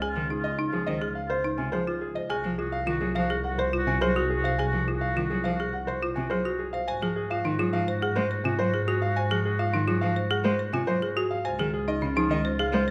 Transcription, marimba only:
0, 0, Header, 1, 2, 480
1, 0, Start_track
1, 0, Tempo, 571429
1, 14, Time_signature, 4, 2, 24, 8
1, 10844, End_track
2, 0, Start_track
2, 0, Title_t, "Marimba"
2, 0, Program_c, 0, 12
2, 16, Note_on_c, 0, 68, 67
2, 171, Note_off_c, 0, 68, 0
2, 255, Note_on_c, 0, 63, 51
2, 410, Note_off_c, 0, 63, 0
2, 493, Note_on_c, 0, 63, 70
2, 649, Note_off_c, 0, 63, 0
2, 736, Note_on_c, 0, 72, 58
2, 853, Note_on_c, 0, 68, 67
2, 891, Note_off_c, 0, 72, 0
2, 1010, Note_off_c, 0, 68, 0
2, 1094, Note_on_c, 0, 72, 51
2, 1213, Note_on_c, 0, 63, 66
2, 1250, Note_off_c, 0, 72, 0
2, 1370, Note_off_c, 0, 63, 0
2, 1455, Note_on_c, 0, 68, 58
2, 1574, Note_on_c, 0, 65, 68
2, 1610, Note_off_c, 0, 68, 0
2, 1730, Note_off_c, 0, 65, 0
2, 1813, Note_on_c, 0, 72, 55
2, 1934, Note_on_c, 0, 68, 77
2, 1970, Note_off_c, 0, 72, 0
2, 2090, Note_off_c, 0, 68, 0
2, 2174, Note_on_c, 0, 65, 57
2, 2330, Note_off_c, 0, 65, 0
2, 2410, Note_on_c, 0, 65, 78
2, 2569, Note_off_c, 0, 65, 0
2, 2654, Note_on_c, 0, 72, 66
2, 2773, Note_on_c, 0, 68, 78
2, 2810, Note_off_c, 0, 72, 0
2, 2930, Note_off_c, 0, 68, 0
2, 3016, Note_on_c, 0, 72, 69
2, 3135, Note_on_c, 0, 65, 77
2, 3171, Note_off_c, 0, 72, 0
2, 3290, Note_off_c, 0, 65, 0
2, 3376, Note_on_c, 0, 68, 72
2, 3496, Note_on_c, 0, 66, 81
2, 3531, Note_off_c, 0, 68, 0
2, 3651, Note_off_c, 0, 66, 0
2, 3739, Note_on_c, 0, 72, 62
2, 3858, Note_on_c, 0, 68, 75
2, 3892, Note_off_c, 0, 72, 0
2, 4012, Note_off_c, 0, 68, 0
2, 4099, Note_on_c, 0, 65, 56
2, 4252, Note_off_c, 0, 65, 0
2, 4341, Note_on_c, 0, 65, 73
2, 4492, Note_off_c, 0, 65, 0
2, 4580, Note_on_c, 0, 72, 57
2, 4703, Note_on_c, 0, 68, 69
2, 4732, Note_off_c, 0, 72, 0
2, 4853, Note_off_c, 0, 68, 0
2, 4943, Note_on_c, 0, 72, 56
2, 5062, Note_on_c, 0, 65, 69
2, 5093, Note_off_c, 0, 72, 0
2, 5213, Note_off_c, 0, 65, 0
2, 5300, Note_on_c, 0, 68, 58
2, 5421, Note_on_c, 0, 66, 68
2, 5452, Note_off_c, 0, 68, 0
2, 5572, Note_off_c, 0, 66, 0
2, 5663, Note_on_c, 0, 72, 61
2, 5771, Note_off_c, 0, 72, 0
2, 5781, Note_on_c, 0, 72, 65
2, 5901, Note_on_c, 0, 68, 74
2, 5933, Note_off_c, 0, 72, 0
2, 6053, Note_off_c, 0, 68, 0
2, 6141, Note_on_c, 0, 65, 63
2, 6258, Note_on_c, 0, 63, 66
2, 6292, Note_off_c, 0, 65, 0
2, 6379, Note_on_c, 0, 65, 85
2, 6412, Note_off_c, 0, 63, 0
2, 6532, Note_off_c, 0, 65, 0
2, 6620, Note_on_c, 0, 72, 63
2, 6741, Note_on_c, 0, 68, 81
2, 6772, Note_off_c, 0, 72, 0
2, 6892, Note_off_c, 0, 68, 0
2, 6979, Note_on_c, 0, 72, 61
2, 7099, Note_on_c, 0, 65, 73
2, 7132, Note_off_c, 0, 72, 0
2, 7252, Note_off_c, 0, 65, 0
2, 7339, Note_on_c, 0, 68, 62
2, 7459, Note_on_c, 0, 66, 76
2, 7492, Note_off_c, 0, 68, 0
2, 7612, Note_off_c, 0, 66, 0
2, 7702, Note_on_c, 0, 72, 68
2, 7821, Note_on_c, 0, 68, 80
2, 7853, Note_off_c, 0, 72, 0
2, 7973, Note_off_c, 0, 68, 0
2, 8059, Note_on_c, 0, 65, 59
2, 8178, Note_on_c, 0, 63, 64
2, 8212, Note_off_c, 0, 65, 0
2, 8297, Note_on_c, 0, 65, 84
2, 8331, Note_off_c, 0, 63, 0
2, 8451, Note_off_c, 0, 65, 0
2, 8537, Note_on_c, 0, 72, 62
2, 8658, Note_on_c, 0, 68, 85
2, 8691, Note_off_c, 0, 72, 0
2, 8811, Note_off_c, 0, 68, 0
2, 8898, Note_on_c, 0, 72, 60
2, 9019, Note_on_c, 0, 65, 75
2, 9051, Note_off_c, 0, 72, 0
2, 9172, Note_off_c, 0, 65, 0
2, 9260, Note_on_c, 0, 68, 64
2, 9380, Note_on_c, 0, 66, 80
2, 9412, Note_off_c, 0, 68, 0
2, 9532, Note_off_c, 0, 66, 0
2, 9619, Note_on_c, 0, 72, 63
2, 9739, Note_on_c, 0, 68, 83
2, 9772, Note_off_c, 0, 72, 0
2, 9892, Note_off_c, 0, 68, 0
2, 9978, Note_on_c, 0, 63, 65
2, 10097, Note_on_c, 0, 61, 62
2, 10131, Note_off_c, 0, 63, 0
2, 10220, Note_on_c, 0, 63, 85
2, 10251, Note_off_c, 0, 61, 0
2, 10372, Note_off_c, 0, 63, 0
2, 10457, Note_on_c, 0, 72, 65
2, 10579, Note_on_c, 0, 68, 85
2, 10611, Note_off_c, 0, 72, 0
2, 10732, Note_off_c, 0, 68, 0
2, 10818, Note_on_c, 0, 72, 65
2, 10844, Note_off_c, 0, 72, 0
2, 10844, End_track
0, 0, End_of_file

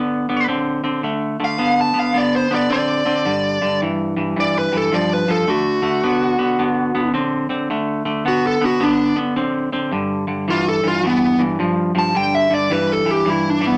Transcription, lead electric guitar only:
0, 0, Header, 1, 2, 480
1, 0, Start_track
1, 0, Tempo, 555556
1, 903, Time_signature, 4, 2, 24, 8
1, 11902, End_track
2, 0, Start_track
2, 0, Title_t, "Lead electric guitar"
2, 0, Program_c, 0, 29
2, 0, Note_on_c, 0, 74, 98
2, 399, Note_off_c, 0, 74, 0
2, 1247, Note_on_c, 0, 77, 80
2, 1544, Note_off_c, 0, 77, 0
2, 1562, Note_on_c, 0, 81, 70
2, 1707, Note_off_c, 0, 81, 0
2, 1723, Note_on_c, 0, 77, 76
2, 1867, Note_off_c, 0, 77, 0
2, 1881, Note_on_c, 0, 74, 82
2, 2025, Note_off_c, 0, 74, 0
2, 2039, Note_on_c, 0, 72, 89
2, 2184, Note_off_c, 0, 72, 0
2, 2200, Note_on_c, 0, 74, 83
2, 2345, Note_off_c, 0, 74, 0
2, 2361, Note_on_c, 0, 74, 95
2, 3279, Note_off_c, 0, 74, 0
2, 3803, Note_on_c, 0, 74, 97
2, 3944, Note_off_c, 0, 74, 0
2, 3963, Note_on_c, 0, 71, 91
2, 4104, Note_off_c, 0, 71, 0
2, 4122, Note_on_c, 0, 69, 83
2, 4264, Note_off_c, 0, 69, 0
2, 4269, Note_on_c, 0, 74, 100
2, 4435, Note_off_c, 0, 74, 0
2, 4435, Note_on_c, 0, 71, 83
2, 4580, Note_off_c, 0, 71, 0
2, 4584, Note_on_c, 0, 69, 89
2, 4751, Note_off_c, 0, 69, 0
2, 4751, Note_on_c, 0, 66, 107
2, 6147, Note_off_c, 0, 66, 0
2, 7152, Note_on_c, 0, 66, 99
2, 7298, Note_off_c, 0, 66, 0
2, 7318, Note_on_c, 0, 69, 84
2, 7461, Note_off_c, 0, 69, 0
2, 7476, Note_on_c, 0, 66, 88
2, 7620, Note_off_c, 0, 66, 0
2, 7633, Note_on_c, 0, 62, 95
2, 7922, Note_off_c, 0, 62, 0
2, 9074, Note_on_c, 0, 65, 100
2, 9221, Note_off_c, 0, 65, 0
2, 9232, Note_on_c, 0, 69, 91
2, 9379, Note_off_c, 0, 69, 0
2, 9398, Note_on_c, 0, 65, 83
2, 9543, Note_off_c, 0, 65, 0
2, 9561, Note_on_c, 0, 59, 106
2, 9848, Note_off_c, 0, 59, 0
2, 10356, Note_on_c, 0, 81, 102
2, 10503, Note_off_c, 0, 81, 0
2, 10511, Note_on_c, 0, 79, 93
2, 10668, Note_off_c, 0, 79, 0
2, 10668, Note_on_c, 0, 76, 91
2, 10832, Note_off_c, 0, 76, 0
2, 10832, Note_on_c, 0, 74, 93
2, 10982, Note_off_c, 0, 74, 0
2, 10994, Note_on_c, 0, 71, 96
2, 11165, Note_off_c, 0, 71, 0
2, 11165, Note_on_c, 0, 69, 97
2, 11309, Note_off_c, 0, 69, 0
2, 11326, Note_on_c, 0, 67, 88
2, 11489, Note_off_c, 0, 67, 0
2, 11489, Note_on_c, 0, 64, 86
2, 11662, Note_off_c, 0, 64, 0
2, 11662, Note_on_c, 0, 62, 92
2, 11798, Note_off_c, 0, 62, 0
2, 11814, Note_on_c, 0, 59, 86
2, 11902, Note_off_c, 0, 59, 0
2, 11902, End_track
0, 0, End_of_file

